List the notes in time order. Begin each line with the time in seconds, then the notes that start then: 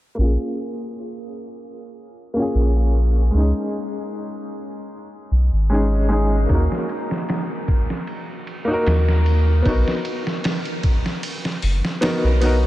0.15 A#1 A#3 C#4
0.21 F4 G#4
2.34 A#3 C#4
2.39 F4 G#4
2.55 A#1
3.31 C#2 G#3 C#4
3.37 D#4 G#4
5.31 B1
5.52 G#1
5.70 G#3 C#4 D#4
5.74 G#4
6.09 G#3 C#4 D#4
6.13 G#4
6.46 D#2 A#3 D#4, kick, ride
6.51 F#4 A#4
6.72 snare
6.89 ride
7.11 snare
7.29 snare, ride
7.68 kick, ride
7.90 snare
8.07 ride
8.47 ride
8.65 A#3 D#4
8.71 F#4 A#4
8.86 D#2, snare, ride
9.09 snare
9.26 ride
9.62 B1 B3 D#4, kick, ride
9.68 F#4 A#4
9.88 snare
10.05 ride
10.27 snare
10.44 snare, ride
10.65 ride
10.83 kick, ride
11.06 snare
11.23 ride
11.45 snare
11.62 F#1, open hi-hat
11.85 snare
12.01 B3 D#4 F#4 A#4, snare, ride
12.24 B1
12.41 B3 D#4 F#4, ride
12.45 A#4